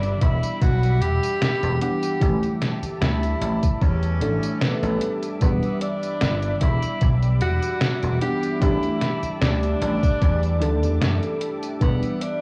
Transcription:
Already playing: G1 E3 G3 B3 D4 E5 B5 D6
0.03 closed hi-hat, tambourine
0.21 E1 E4, kick, closed hi-hat
0.43 closed hi-hat, tambourine
0.62 B1 F#4, kick, closed hi-hat, tambourine
0.83 closed hi-hat, tambourine
1.01 E1 G4, closed hi-hat
1.23 closed hi-hat, tambourine
1.42 snare, closed hi-hat, tambourine
1.63 E1, closed hi-hat, tambourine
1.80 E3 B3 D4 G4 F#5, closed hi-hat
2.03 closed hi-hat, tambourine
2.20 A1 D3 E3 A3 G4 E5 A5, kick, closed hi-hat, tambourine
2.43 closed hi-hat, tambourine
2.62 snare, closed hi-hat
2.83 muted slap bass stroke, closed hi-hat, tambourine
3.01 D2 E4, snare, closed hi-hat, tambourine
3.23 closed hi-hat, tambourine
3.41 A1, closed hi-hat
3.63 kick, closed hi-hat, tambourine
3.81 E2 C#4, kick, closed hi-hat, tambourine
4.03 closed hi-hat, tambourine
4.20 A1 E3 A3 D4 A4, closed hi-hat
4.43 closed hi-hat, tambourine
4.61 B3, snare, closed hi-hat, tambourine
4.82 A1, closed hi-hat, tambourine
5.01 closed hi-hat
5.23 closed hi-hat, tambourine
5.40 E1 E3 G3 B3 D4 B5, kick, closed hi-hat, tambourine
5.63 closed hi-hat, tambourine
5.81 D4, closed hi-hat
6.03 closed hi-hat, tambourine
6.21 G1, snare, closed hi-hat, tambourine
6.42 closed hi-hat, tambourine
6.61 E1 E4, kick, closed hi-hat
6.82 closed hi-hat, tambourine
7.01 B1, kick, closed hi-hat, tambourine
7.22 closed hi-hat, tambourine
7.41 E1 F#4, closed hi-hat
7.62 closed hi-hat, tambourine
7.81 snare, closed hi-hat, tambourine
8.03 E1, closed hi-hat, tambourine
8.20 E3 B3 D4 G4 F#5, closed hi-hat
8.43 closed hi-hat, tambourine
8.60 A1 E3 A3 D4 E4 G4 E5 A5, kick, closed hi-hat, tambourine
8.83 closed hi-hat, tambourine
9.01 snare, closed hi-hat
9.23 muted slap bass stroke, closed hi-hat, tambourine
9.41 D2 D4, snare, closed hi-hat, tambourine
9.63 closed hi-hat, tambourine
9.81 A1, closed hi-hat
10.03 kick, closed hi-hat, tambourine
10.21 E2, kick, closed hi-hat, tambourine
10.43 closed hi-hat, tambourine
10.60 D2 E3 A3 D4 A4, closed hi-hat
10.82 E2, closed hi-hat, tambourine
11.01 F#2, snare, closed hi-hat, tambourine
11.23 closed hi-hat, tambourine
11.41 closed hi-hat
11.63 closed hi-hat, tambourine
11.80 E1 E3 G3 B3 D4 B5, kick, closed hi-hat, tambourine
12.03 closed hi-hat, tambourine
12.21 D4, closed hi-hat

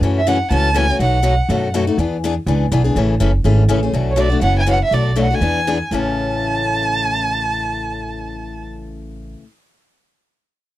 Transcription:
0.01 F#2 C#3 E3 A3 C#4 F#4
0.18 E5
0.27 C#3 E3 A3 C#4 F#4 F#5
0.50 C#2 C#3 E3 A3 C#4 F#4 A5
0.74 C#3 E3 A3 C#4 F#4 G#5
0.89 A3 C#4 F#4
0.99 B1 B2 F#3 A3 D#4 F#4 F#5
1.23 B2 F#3 A3 D#4 F#4
1.49 F#2 B2 F#3 A3 D#4 F#4
1.74 B2 F#3 A3 D#4 F#4
1.87 A3 D#4 F#4
1.98 E2 E3 B3 D4 G#4
2.24 E3 B3 D4 G#4
2.46 C#2 E3 B3 D4 G#4
2.72 B1 E3 B3 D4 G#4
2.84 B3 D4 G#4
2.96 A1 C#3 E3 A3 C#4 G#4
3.20 F#1 C#3 E3 A3 C#4 G#4
3.44 G#1 C#3 E3 A3 C#4 G#4
3.69 A1 C#3 E3 A3 C#4 G#4
3.83 A3 C#4 G#4
3.93 B1 B2 F#3 A3 D4 F#4
4.10 C#5
4.16 B2 F#3 A3 D4 F#4
4.20 D5
4.30 A3 D4 F#4
4.41 F#1 B2 E3 B3 C#4 F#4 F#5
4.59 G#5
4.66 B2 E3 B3 C#4 F#4
4.71 F#5
4.84 E5
4.91 B1 B2 F#3 A3 D4 F#4 D5
5.16 B2 F#3 A3 D4 F#4
5.21 F#5
5.30 A3 D4 F#4
5.35 G#5
5.41 E2 E3 B3 D4 G#4
5.67 E3 B3 D4 G#4
5.91 A1 A2 C#3 E3 A3 C#4 A5

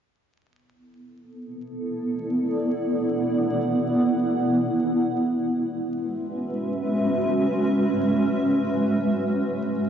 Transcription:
0.45 B3
0.56 E4
0.73 A4
1.56 F#5
1.71 D5
5.11 G#3
5.37 E5
5.51 C#4 B4
5.61 F#4

